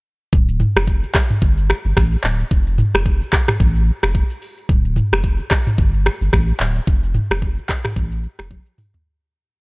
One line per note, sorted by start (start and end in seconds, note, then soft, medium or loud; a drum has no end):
0.33 0.64 D1 loud
0.33 kick loud
0.33 shaker medium
0.49 shaker medium
0.60 mid tom medium
0.60 shaker medium
0.76 1.04 F1 medium
0.76 finger snap medium
0.76 cross-stick loud
0.76 shaker soft
0.87 kick medium
0.87 shaker medium
1.03 shaker soft
1.14 finger snap medium
1.14 kick loud
1.14 cross-stick loud
1.14 clap medium
1.14 open hi-hat medium
1.14 shaker medium
1.30 mid tom medium
1.30 shaker medium
1.42 1.73 G1 loud
1.42 kick loud
1.42 shaker medium
1.57 shaker medium
1.70 finger snap medium
1.70 cross-stick loud
1.85 1.93 G1 medium
1.85 shaker medium
1.97 2.16 A1 loud
1.97 finger snap medium
1.97 kick loud
1.97 cross-stick loud
1.97 shaker medium
2.12 shaker medium
2.24 2.43 D1 loud
2.24 clap medium
2.24 open hi-hat medium
2.24 shaker soft
2.39 shaker soft
2.51 2.82 F1 loud
2.51 kick loud
2.51 shaker medium
2.67 shaker medium
2.78 mid tom loud
2.78 shaker medium
2.94 3.22 F1 medium
2.94 finger snap medium
2.94 cross-stick loud
2.94 shaker soft
3.06 kick medium
3.06 shaker medium
3.22 shaker soft
3.33 finger snap medium
3.33 kick loud
3.33 cross-stick medium
3.33 clap medium
3.33 open hi-hat medium
3.33 shaker medium
3.48 finger snap medium
3.48 cross-stick loud
3.48 mid tom medium
3.48 shaker medium
3.60 3.91 A1 loud
3.60 kick loud
3.60 shaker medium
3.76 shaker medium
4.03 4.23 F1 medium
4.03 finger snap medium
4.03 cross-stick loud
4.03 shaker medium
4.15 kick loud
4.15 shaker medium
4.30 shaker medium
4.42 open hi-hat medium
4.42 shaker soft
4.57 shaker soft
4.69 5.00 D1 loud
4.69 kick loud
4.69 shaker medium
4.85 shaker medium
4.96 mid tom medium
4.96 shaker medium
5.12 5.40 F1 medium
5.12 finger snap medium
5.12 cross-stick loud
5.12 shaker soft
5.24 kick medium
5.24 shaker medium
5.40 shaker medium
5.51 finger snap medium
5.51 kick loud
5.51 cross-stick loud
5.51 clap medium
5.51 open hi-hat medium
5.51 shaker medium
5.67 mid tom medium
5.67 shaker medium
5.78 6.09 G1 loud
5.78 kick loud
5.78 shaker medium
5.94 shaker medium
6.06 finger snap medium
6.06 cross-stick loud
6.21 6.30 G1 medium
6.21 shaker medium
6.33 6.52 A1 loud
6.33 finger snap medium
6.33 kick medium
6.33 cross-stick loud
6.33 shaker medium
6.48 shaker medium
6.60 6.80 D1 medium
6.60 clap medium
6.60 open hi-hat medium
6.60 shaker soft
6.76 shaker soft
6.87 7.18 F1 loud
6.87 kick loud
6.87 shaker medium
7.03 shaker medium
7.14 mid tom medium
7.14 shaker medium
7.30 7.58 F1 medium
7.30 finger snap medium
7.30 cross-stick loud
7.30 shaker soft
7.42 kick medium
7.42 shaker medium
7.58 shaker soft
7.69 finger snap medium
7.69 kick loud
7.69 cross-stick medium
7.69 clap loud
7.69 open hi-hat medium
7.69 shaker medium
7.85 finger snap medium
7.85 cross-stick loud
7.85 mid tom medium
7.85 shaker medium
7.96 8.27 A1 loud
7.96 kick loud
7.96 shaker medium
8.12 shaker medium
8.24 shaker medium
8.39 8.59 F1 medium
8.39 finger snap medium
8.39 cross-stick loud
8.39 shaker medium
8.51 kick loud
8.51 high tom medium
8.51 shaker medium
8.66 shaker medium
8.78 mid tom loud
8.78 open hi-hat medium
8.78 shaker soft
8.94 floor tom loud
8.94 shaker soft